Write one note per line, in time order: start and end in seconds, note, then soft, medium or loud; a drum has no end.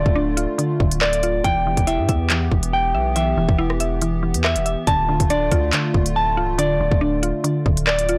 0.00 0.57 D3 medium
0.00 1.41 D3 medium
0.00 1.41 A3 medium
0.00 0.36 F4 medium
0.00 1.41 F4 medium
0.00 1.00 D5 loud
0.00 1.44 A5 loud
0.06 0.47 D1 loud
0.06 kick loud
0.15 1.23 D4 medium
0.37 1.22 F4 medium
0.37 closed hi-hat medium
0.58 0.79 D3 loud
0.58 closed hi-hat medium
0.80 1.42 D1 loud
0.80 1.45 D3 medium
0.80 kick loud
0.91 closed hi-hat medium
1.01 1.44 D5 loud
1.01 cross-stick loud
1.01 clap loud
1.13 closed hi-hat medium
1.23 1.45 F4 medium
1.23 closed hi-hat medium
1.44 1.76 E1 loud
1.44 4.84 E3 medium
1.44 1.66 E3 loud
1.44 4.84 B3 medium
1.44 4.84 G4 medium
1.44 2.72 G5 loud
1.44 kick loud
1.44 closed hi-hat medium
1.67 2.30 E3 medium
1.77 2.00 E1 loud
1.77 kick medium
1.77 closed hi-hat medium
1.87 2.94 E4 medium
1.87 3.14 E5 medium
1.87 closed hi-hat medium
1.99 2.08 G2 loud
2.09 2.50 E2 loud
2.09 2.93 E5 medium
2.09 kick loud
2.09 closed hi-hat medium
2.30 2.50 E3 loud
2.30 clap loud
2.30 closed hi-hat medium
2.51 2.96 E1 loud
2.51 3.15 E3 medium
2.51 kick medium
2.63 closed hi-hat medium
2.73 4.87 G5 loud
2.94 3.35 B1 loud
2.94 3.79 E5 medium
3.16 3.36 E3 medium
3.16 4.43 E5 loud
3.16 closed hi-hat medium
3.37 3.48 E1 loud
3.37 4.01 E3 medium
3.49 4.36 E1 loud
3.49 kick loud
3.58 4.66 E4 loud
3.70 cross-stick medium
3.80 4.64 E5 medium
3.80 closed hi-hat medium
4.02 4.22 E3 medium
4.02 closed hi-hat medium
4.23 4.87 E3 medium
4.34 4.57 E2 loud
4.34 closed hi-hat medium
4.44 4.87 E5 medium
4.44 cross-stick loud
4.44 clap loud
4.56 4.76 E1 loud
4.56 closed hi-hat medium
4.66 4.87 E5 medium
4.66 closed hi-hat medium
4.87 5.19 D1 loud
4.87 8.18 D3 medium
4.87 5.07 D3 medium
4.87 8.18 A3 medium
4.87 8.18 F4 medium
4.87 6.15 A5 loud
4.87 kick loud
4.87 closed hi-hat medium
5.09 5.72 D3 medium
5.20 5.50 D1 loud
5.20 kick loud
5.20 closed hi-hat medium
5.30 6.37 D4 medium
5.30 6.58 D5 medium
5.30 closed hi-hat medium
5.52 5.72 D2 loud
5.52 6.36 F4 medium
5.52 kick loud
5.52 closed hi-hat medium
5.73 5.93 D3 medium
5.73 clap loud
5.73 closed hi-hat medium
5.94 6.39 D1 loud
5.94 6.57 D3 medium
5.94 kick loud
6.06 closed hi-hat medium
6.16 8.18 A5 loud
6.37 6.60 C1 loud
6.37 7.22 F4 medium
6.58 6.79 D1 loud
6.58 6.79 D3 loud
6.58 7.86 D5 loud
6.58 closed hi-hat medium
6.80 6.91 D1 loud
6.80 7.43 D3 medium
6.91 7.33 D1 loud
6.91 kick loud
7.01 8.08 D4 medium
7.23 8.08 F4 medium
7.23 closed hi-hat medium
7.44 7.65 D3 loud
7.44 closed hi-hat medium
7.66 8.18 D1 loud
7.66 8.18 D3 medium
7.66 kick medium
7.77 closed hi-hat medium
7.87 8.18 D5 loud
7.87 cross-stick loud
7.87 clap loud
7.99 closed hi-hat medium
8.09 8.18 F4 medium
8.09 closed hi-hat medium